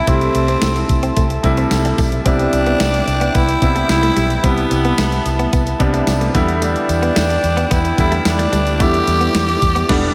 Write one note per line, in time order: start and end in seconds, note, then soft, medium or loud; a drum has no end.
0.00 0.07 C3 medium
0.00 0.07 G3 medium
0.00 0.08 A3 medium
0.00 0.08 E4 medium
0.00 0.10 E4 loud
0.00 2.22 E4 medium
0.00 2.21 A4 medium
0.00 2.21 E5 medium
0.00 2.23 A5 medium
0.07 0.27 C2 loud
0.07 1.08 C3 medium
0.07 1.09 G3 medium
0.07 1.09 A3 medium
0.07 0.16 A3 medium
0.07 1.17 C4 medium
0.07 1.09 E4 medium
0.07 kick loud
0.07 closed hi-hat medium
0.07 tambourine soft
0.21 closed hi-hat soft
0.34 0.54 C2 medium
0.34 muted clean electric guitar stroke soft
0.34 closed hi-hat medium
0.34 tambourine soft
0.48 0.57 C4 medium
0.48 closed hi-hat soft
0.62 0.82 C2 medium
0.62 0.71 A3 medium
0.62 snare loud
0.62 closed hi-hat medium
0.62 tambourine medium
0.76 muted clean electric guitar stroke soft
0.76 closed hi-hat soft
0.89 1.09 C2 medium
0.89 kick medium
0.89 closed hi-hat medium
0.89 tambourine soft
1.03 1.11 C4 medium
1.03 closed hi-hat medium
1.03 tambourine soft
1.16 1.36 C2 medium
1.16 1.25 A3 medium
1.16 kick medium
1.16 closed hi-hat medium
1.16 tambourine medium
1.30 muted clean electric guitar stroke soft
1.30 closed hi-hat soft
1.43 1.63 C2 loud
1.43 2.20 C3 medium
1.43 2.20 G3 medium
1.43 2.20 A3 medium
1.43 2.20 E4 medium
1.43 kick medium
1.43 closed hi-hat medium
1.43 tambourine soft
1.57 1.66 C4 medium
1.57 closed hi-hat medium
1.57 tambourine soft
1.71 1.91 C2 loud
1.71 muted clean electric guitar stroke soft
1.71 snare loud
1.71 closed hi-hat medium
1.71 tambourine medium
1.85 1.93 G3 medium
1.85 closed hi-hat medium
1.98 2.18 B1 medium
1.98 2.07 A3 medium
1.98 kick medium
1.98 open hi-hat medium
1.98 tambourine medium
2.12 closed hi-hat soft
2.25 2.45 C2 loud
2.25 3.27 C3 medium
2.25 3.27 G3 medium
2.25 3.27 B3 medium
2.25 2.34 C4 medium
2.25 3.38 D4 loud
2.25 10.14 E4 medium
2.25 3.27 E4 medium
2.25 10.14 B4 medium
2.25 6.31 E5 medium
2.25 4.42 G5 medium
2.25 kick loud
2.25 closed hi-hat medium
2.25 tambourine soft
2.39 closed hi-hat soft
2.53 2.73 C2 loud
2.53 muted clean electric guitar stroke soft
2.53 closed hi-hat medium
2.53 tambourine soft
2.66 2.75 B3 medium
2.66 closed hi-hat soft
2.80 3.00 C2 loud
2.80 2.89 A3 medium
2.80 snare loud
2.80 closed hi-hat medium
2.80 tambourine medium
2.94 muted clean electric guitar stroke soft
2.94 closed hi-hat soft
3.07 3.27 C2 loud
3.07 closed hi-hat medium
3.07 tambourine soft
3.21 3.30 B3 medium
3.21 closed hi-hat medium
3.35 3.55 C2 loud
3.35 3.43 B3 medium
3.35 3.90 E4 loud
3.35 kick medium
3.35 closed hi-hat medium
3.35 tambourine medium
3.48 muted clean electric guitar stroke soft
3.48 closed hi-hat medium
3.48 tambourine soft
3.61 3.82 C2 medium
3.61 4.38 C3 medium
3.61 4.38 G3 medium
3.61 4.38 B3 medium
3.61 4.38 E4 medium
3.61 kick medium
3.61 closed hi-hat medium
3.61 tambourine soft
3.75 3.84 A3 medium
3.75 closed hi-hat medium
3.75 tambourine soft
3.89 4.09 C2 loud
3.89 4.47 E4 loud
3.89 muted clean electric guitar stroke soft
3.89 snare loud
3.89 closed hi-hat medium
3.89 tambourine medium
4.03 4.11 A3 medium
4.03 closed hi-hat medium
4.17 4.36 B1 medium
4.17 4.25 G3 medium
4.17 closed hi-hat medium
4.17 tambourine medium
4.30 closed hi-hat soft
4.30 tambourine soft
4.43 4.63 C2 loud
4.43 5.45 C3 medium
4.43 5.45 G3 medium
4.43 5.45 B3 medium
4.43 5.54 B3 medium
4.43 4.52 C4 medium
4.43 5.45 E4 medium
4.43 6.33 A5 medium
4.43 kick loud
4.43 closed hi-hat medium
4.43 tambourine soft
4.58 closed hi-hat soft
4.71 4.91 C2 medium
4.71 muted clean electric guitar stroke soft
4.71 closed hi-hat medium
4.71 tambourine soft
4.85 4.93 B3 medium
4.85 closed hi-hat soft
4.98 5.18 C2 loud
4.98 5.07 A3 medium
4.98 snare loud
4.98 closed hi-hat medium
4.98 tambourine medium
5.12 muted clean electric guitar stroke soft
5.12 closed hi-hat soft
5.25 5.45 C2 medium
5.25 closed hi-hat medium
5.25 tambourine soft
5.39 5.48 B3 medium
5.39 closed hi-hat medium
5.53 5.73 C2 medium
5.53 5.61 B3 medium
5.53 kick medium
5.53 closed hi-hat medium
5.53 tambourine medium
5.66 muted clean electric guitar stroke soft
5.66 closed hi-hat medium
5.66 tambourine soft
5.79 6.00 C2 medium
5.79 6.34 C3 medium
5.79 6.33 G3 medium
5.79 6.33 B3 medium
5.79 6.35 D4 loud
5.79 kick medium
5.79 closed hi-hat medium
5.79 tambourine soft
5.93 6.02 A3 medium
5.93 closed hi-hat medium
5.93 tambourine soft
6.07 6.27 C2 loud
6.07 muted clean electric guitar stroke soft
6.07 snare loud
6.07 closed hi-hat medium
6.07 tambourine medium
6.21 6.30 A3 medium
6.21 closed hi-hat medium
6.34 6.74 E2 loud
6.34 7.36 D3 loud
6.34 7.36 G3 medium
6.34 6.43 G3 medium
6.34 7.36 B3 medium
6.34 7.36 E4 loud
6.34 10.14 D5 medium
6.34 10.14 G5 medium
6.34 kick loud
6.34 closed hi-hat medium
6.34 tambourine medium
6.48 closed hi-hat soft
6.62 6.70 A3 medium
6.62 7.74 D4 loud
6.62 closed hi-hat medium
6.62 tambourine soft
6.76 closed hi-hat soft
6.89 7.09 E2 loud
6.89 muted clean electric guitar stroke soft
6.89 closed hi-hat medium
6.89 tambourine soft
7.02 7.11 B3 medium
7.02 closed hi-hat soft
7.16 7.36 E2 loud
7.16 7.25 A3 medium
7.16 snare loud
7.16 closed hi-hat medium
7.16 tambourine loud
7.30 muted clean electric guitar stroke soft
7.30 closed hi-hat soft
7.44 7.63 E2 loud
7.44 closed hi-hat medium
7.44 tambourine soft
7.57 7.66 B3 medium
7.57 closed hi-hat medium
7.57 tambourine soft
7.71 7.91 E2 loud
7.71 7.79 B3 medium
7.71 7.99 E4 medium
7.71 kick medium
7.71 closed hi-hat medium
7.71 tambourine medium
7.84 muted clean electric guitar stroke soft
7.84 closed hi-hat medium
7.84 tambourine soft
7.98 8.18 E2 loud
7.98 8.74 D3 medium
7.98 8.74 G3 medium
7.98 8.74 B3 medium
7.98 8.75 E4 medium
7.98 8.29 E4 medium
7.98 kick loud
7.98 closed hi-hat medium
7.98 tambourine soft
8.12 8.20 A3 medium
8.12 closed hi-hat medium
8.12 tambourine soft
8.25 8.45 E2 loud
8.25 8.83 D4 loud
8.25 muted clean electric guitar stroke soft
8.25 snare loud
8.25 closed hi-hat medium
8.25 tambourine medium
8.39 8.47 A3 medium
8.39 closed hi-hat medium
8.53 8.80 D2 medium
8.53 8.61 G3 medium
8.53 closed hi-hat medium
8.53 tambourine medium
8.67 closed hi-hat soft
8.67 tambourine soft
8.80 9.00 E2 loud
8.80 9.81 D3 medium
8.80 9.81 G3 medium
8.80 8.89 A3 medium
8.80 9.82 B3 medium
8.80 9.82 E4 medium
8.80 10.14 G4 loud
8.80 kick loud
8.80 closed hi-hat medium
8.80 tambourine soft
8.94 closed hi-hat soft
9.07 9.27 E2 loud
9.07 muted clean electric guitar stroke soft
9.07 closed hi-hat medium
9.07 tambourine soft
9.21 9.29 B3 medium
9.21 closed hi-hat soft
9.35 9.54 E2 loud
9.35 9.43 A3 medium
9.35 snare loud
9.35 closed hi-hat medium
9.35 tambourine medium
9.48 muted clean electric guitar stroke soft
9.48 closed hi-hat soft
9.62 9.82 E2 loud
9.62 kick loud
9.62 closed hi-hat medium
9.62 tambourine soft
9.75 9.84 B3 medium
9.75 closed hi-hat medium
9.75 tambourine soft
9.89 10.08 E1 loud
9.89 10.08 D3 loud
9.89 10.08 G3 loud
9.89 10.08 B3 loud
9.89 10.08 D4 loud
9.89 kick loud
9.89 snare loud
9.89 crash medium